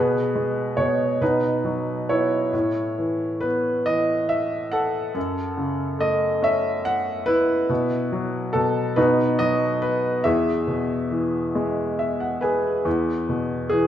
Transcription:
Already playing: B2 G#4 B4
0.36 G#3
0.77 B2 C#5
1.21 B2 D#4 B4
1.65 F#3
2.09 B3 E4 C#5
2.53 A2
2.98 E3
3.41 B3 B4
3.86 E3 D#5
4.29 E5
4.72 A4 F#5
5.15 F#2
5.57 C#3
5.99 A3 D#5
6.42 C#4 E5
6.85 F#5
7.26 E4 B4
7.69 B2
8.12 F#3
8.53 B2 A4
8.96 B2 D#4 B4
9.39 F#3 D#5
9.82 B3 B4
10.24 E2 G#4 E5
10.67 B2
11.11 E3
11.55 G#3
11.99 E5
12.20 F#5
12.41 G#4 B4 G#5
12.85 E2
13.29 B2
13.69 E3 G#4

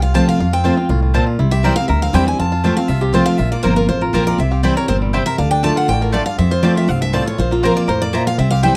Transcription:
Already playing: C2 C3 C4
0.02 F4 F5
0.14 F3 A3 C4 F4 C5 A5
0.27 F4 F5
0.39 F2 F4
0.53 C4 G5
0.64 F3 A3 C4 F4 C5 A5
0.77 C4 F4
0.89 C2 A2 F4
1.02 F4
1.14 A#2 C4 F4 C5 A5
1.27 F4
1.39 C2 C3 E4
1.51 G4 E5
1.63 E3 G3 C4 E4 A#4 C5 D5 G5
1.76 C4 E4 F5
1.88 D2 G2 A#4 E5
2.02 C4 F5
2.13 E2 E3 G3 C4 E4 G4 C5 G5
2.26 C4 E4 G#5
2.39 F2 F4 A5
2.52 F4
2.64 F3 A3 C4 F4 C5 A5
2.76 C4 F4 F5
2.88 C2 C3 F4 E5
3.01 C4 G4
3.13 F3 A3 C4 F4 C5 A5
3.26 C4 F5
3.38 A#1 A#2 F4 E5
3.52 A#3 D5
3.63 G1 F3 A#3 C4 F4 A#4 C5 A#5
3.76 F4 A#4
3.88 A1 F2 F4 C5
4.01 F4 A#4
4.13 A#1 F3 A#3 C4 F4 A#4 C5 A#5
4.27 A#4 D5
4.38 C2 C3 C4 E5
4.52 G4 F5
4.63 E3 G3 C4 E4 C5 D5 G5
4.75 C4 E4 A#4 C#5
4.88 G1 A#2 C4 C5
5.02 G3
5.13 C3 C4 E4 C5 G5
5.26 A#4 E5
5.38 D2 D3 D4 F5
5.51 D4 G5
5.63 D3 A3 D4 F4 D5 A5
5.76 F4 F#5
5.88 A1 A2 C4 G5
5.93 D4
6.01 F4 A#4
6.12 G2 A3 F4 D5 A5
6.26 D4 F5
6.38 F2 C4 E5
6.51 F4 C5
6.63 F3 A3 C4 F4 C5 D5 A5
6.76 F4 E5
6.88 C2 G2 C4 F5
7.01 F3 E5
7.13 A2 C4 F4 C5 D5 A5
7.26 F4 C#5
7.38 A#1 A#2 F4 C5
7.51 A#3 F4
7.63 F3 A#3 C4 F4 A#4 C5 A#5
7.76 A#3 D5
7.88 F2 A2 A#4 C5
8.02 A#3 D5
8.13 A#2 F3 A#3 F4 C5 E5 A#5
8.27 F4 F5
8.38 C2 C3 C4 E5
8.51 G4 F5
8.63 E3 G3 C4 E4 C5 G5

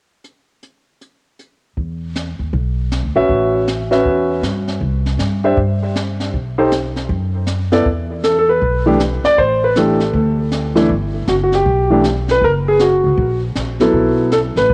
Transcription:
0.24 closed hi-hat
0.63 closed hi-hat
1.01 closed hi-hat
1.39 closed hi-hat
1.77 E2, brush sweep, kick
2.16 snare, hi-hat pedal
2.39 D#2
2.53 B1, brush sweep, kick
2.92 snare, hi-hat pedal
3.03 D2
3.15 A#1 C#4 F#4 B4 E5
3.29 A1, brush sweep, kick
3.68 snare, hi-hat pedal
3.91 C#4 F#4 B4 E5, snare
4.05 E2, brush sweep, kick
4.42 G2, snare, hi-hat pedal
4.68 snare
4.81 C2, brush sweep, kick
5.06 snare
5.18 G2, snare, hi-hat pedal
5.44 D4 G4 C5 E5
5.57 G2, brush sweep, kick
5.96 snare, hi-hat pedal
6.20 snare
6.34 B1, brush sweep, kick
6.58 D#4 G4 A4 C5
6.72 snare, hi-hat pedal
6.96 snare
7.09 F#2, brush sweep, kick
7.47 snare, hi-hat pedal
7.72 B3 E4 A4 D5, snare
7.85 E2, brush sweep, kick
8.24 A4, snare, hi-hat pedal
8.39 A4
8.49 B4
8.61 B1, brush sweep, kick
8.86 E3 A3 D4 G4
9.00 snare, hi-hat pedal
9.24 D5, muted upright bass stroke, snare
9.38 A1 C5, brush sweep, kick
9.64 B4
9.76 E3 A3 D4 G4 A4, snare, hi-hat pedal
10.00 snare
10.13 D2, brush sweep, kick
10.52 snare, hi-hat pedal
10.76 E3 A3 D4 E4, snare
10.89 G1, brush sweep, kick
11.28 F#1 F#4, snare, hi-hat pedal
11.44 F#4
11.52 G4, snare
11.66 B1, brush sweep, kick
11.90 E3 A3 D4 G4
12.04 snare, hi-hat pedal
12.28 B4, snare
12.42 F#1 A#4, brush sweep, kick
12.68 G#4
12.80 F#4, snare, hi-hat pedal
13.04 C#2
13.17 A#1, brush sweep, kick
13.56 A#1, snare, hi-hat pedal
13.80 F#3 B3 E4 A4, snare
13.93 B1, brush sweep, kick
14.32 A4, snare, hi-hat pedal
14.56 A1 B4, snare
14.69 F#1, brush sweep, kick

